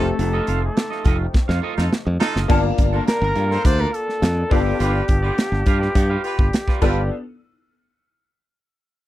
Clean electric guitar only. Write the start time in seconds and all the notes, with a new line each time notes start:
0.05 muted clean electric guitar stroke
0.19 muted clean electric guitar stroke
0.33 F4 A4 D#5
0.47 F4 A4 F5
0.62 muted clean electric guitar stroke
0.76 muted clean electric guitar stroke
0.90 F4 A4 D#5
1.04 F4 A4 D#5
1.19 muted clean electric guitar stroke
1.34 muted clean electric guitar stroke
1.48 F4 A4 F5
1.62 F4 A4 D#5
1.77 muted clean electric guitar stroke
1.91 muted clean electric guitar stroke
2.05 muted clean electric guitar stroke
2.20 F4 A4 D#5
2.34 F4 A4 D#5
2.49 A#3 F4 A4
2.63 muted clean electric guitar stroke
2.78 muted clean electric guitar stroke
2.93 A#3 F4 A4
3.07 muted clean electric guitar stroke
3.21 muted clean electric guitar stroke
3.35 A#3 F4 A4
3.49 A#3 F4 A4
3.64 muted clean electric guitar stroke
3.78 A#3 F4 A4
4.07 muted clean electric guitar stroke
4.22 muted clean electric guitar stroke
4.36 muted clean electric guitar stroke
4.50 F4 B4 D5
4.65 F4 B4 D5
4.79 F4 B4 D5
4.94 muted clean electric guitar stroke
5.08 muted clean electric guitar stroke
5.23 F4 B4 D5
5.37 muted clean electric guitar stroke
5.52 muted clean electric guitar stroke
5.67 F4 B4 F5
5.81 F4 B4 D5
6.10 F4 B4 F5
6.24 muted clean electric guitar stroke
6.39 muted clean electric guitar stroke
6.54 muted clean electric guitar stroke
6.67 F4 B4 D5
6.82 F4 B4 D5